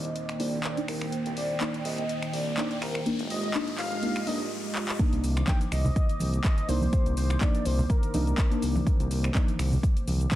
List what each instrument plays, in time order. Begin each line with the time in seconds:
Already playing: analog synth bass C2, analog synth pad D#3 A#3 C5 D6, synth stab A#3 C4 D#4, soft synth lead D#5, riser
0.05 closed hi-hat
0.16 analog synth pad G5, closed hi-hat
0.29 finger snap, closed hi-hat
0.39 analog synth bass C2, synth stab A#3 D4 D#4, soft synth lead D5, open hi-hat
0.64 soft synth lead D5, clap, closed hi-hat
0.77 synth stab A#3 D4 D#4, closed hi-hat
0.88 analog synth bass C2, soft synth lead A#4, finger snap, open hi-hat
1.01 finger snap
1.12 closed hi-hat
1.26 analog synth bass C2, closed hi-hat
1.37 analog synth bass C2, soft synth lead D5, open hi-hat
1.60 synth stab A#3 D4 D#4, clap, closed hi-hat
1.74 closed hi-hat
1.85 analog synth bass C2, soft synth lead D#5, open hi-hat
1.98 closed hi-hat
2.09 closed hi-hat
2.22 finger snap, closed hi-hat
2.33 analog synth bass C2, soft synth lead D5, open hi-hat
2.57 synth stab A#3 D4 D#4, soft synth lead D5, clap, closed hi-hat
2.71 closed hi-hat
2.82 analog synth bass C2, soft synth lead A#4, finger snap, open hi-hat
2.95 finger snap
3.06 analog synth pad G#3 F4 G4 D#5, synth stab A#3 D4 D#4, closed hi-hat
3.19 analog synth bass F1, closed hi-hat
3.30 analog synth bass F1, soft synth lead D#5, open hi-hat
3.44 closed hi-hat
3.54 synth stab A#3 D4 D#4, clap, closed hi-hat
3.68 closed hi-hat
3.78 analog synth bass F1, soft synth lead F5, clap, open hi-hat
3.92 closed hi-hat
4.02 synth stab A#3 D4 D#4, closed hi-hat
4.16 finger snap, closed hi-hat
4.27 analog synth bass F1, synth stab A#3 D4 D#4, soft synth lead D#5, open hi-hat
4.75 clap
4.89 clap
4.99 analog synth pad D#3 A#3 C5 D6, synth stab A#3 D4 D#4, kick, closed hi-hat, cabasa
5.13 analog synth bass C2, closed hi-hat, cabasa
5.24 analog synth bass C2, open hi-hat, cabasa
5.37 finger snap, closed hi-hat, cabasa
5.47 synth stab A#3 D4 D#4, soft synth lead G5, kick, clap, closed hi-hat, high conga, cabasa
5.61 closed hi-hat, cabasa
5.72 analog synth bass C2, soft synth lead D#5, finger snap, open hi-hat, cabasa
5.85 low conga, cabasa
5.96 kick, closed hi-hat, cabasa
6.09 closed hi-hat, cabasa
6.20 analog synth bass C2, open hi-hat, high conga, cabasa
6.34 closed hi-hat, cabasa
6.44 soft synth lead D#5, kick, clap, closed hi-hat, cabasa
6.58 closed hi-hat, cabasa
6.68 analog synth bass C2, synth stab A#3 D4 D#4, soft synth lead C5, open hi-hat, cabasa
6.81 high conga, cabasa
6.93 kick, closed hi-hat, cabasa
7.06 analog synth bass C2, closed hi-hat, cabasa
7.17 analog synth bass C2, soft synth lead C5, open hi-hat, cabasa
7.30 finger snap, cabasa
7.41 synth stab A#3 D4 D#4, soft synth lead D5, kick, clap, closed hi-hat, high conga, cabasa
7.55 closed hi-hat, cabasa
7.65 analog synth bass C2, soft synth lead C5, open hi-hat, cabasa
7.79 low conga, cabasa
7.90 soft synth lead A#4, kick, closed hi-hat, cabasa
8.03 closed hi-hat, cabasa
8.14 analog synth bass C2, synth stab A#3 D4 D#4, open hi-hat, high conga, cabasa
8.27 closed hi-hat, cabasa
8.38 kick, clap, closed hi-hat, cabasa
8.51 synth stab A#3 D4 D#4, closed hi-hat, cabasa
8.62 analog synth bass C2, open hi-hat, cabasa
8.76 high conga, cabasa
8.87 kick, closed hi-hat, cabasa
9.00 analog synth bass C2, closed hi-hat, cabasa
9.11 analog synth bass C2, open hi-hat, cabasa
9.24 finger snap, cabasa
9.35 synth stab A#3 D4 D#4, kick, clap, closed hi-hat, high conga, cabasa
9.48 closed hi-hat, cabasa
9.59 analog synth bass C2, finger snap, open hi-hat, cabasa
9.72 low conga, cabasa
9.83 kick, closed hi-hat, cabasa
9.97 closed hi-hat, cabasa
10.07 analog synth bass C2, open hi-hat, high conga, cabasa
10.21 closed hi-hat, cabasa
10.31 kick, clap, closed hi-hat, cabasa